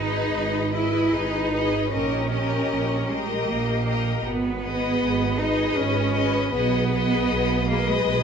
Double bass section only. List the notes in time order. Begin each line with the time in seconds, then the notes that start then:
Already playing: G#1
0.31 G#1
1.13 G#1
1.91 A#1
2.68 A#1
3.46 A#1
4.23 G#1
5.00 G#1
5.76 G#1
6.54 B1
7.29 B1
8.05 B1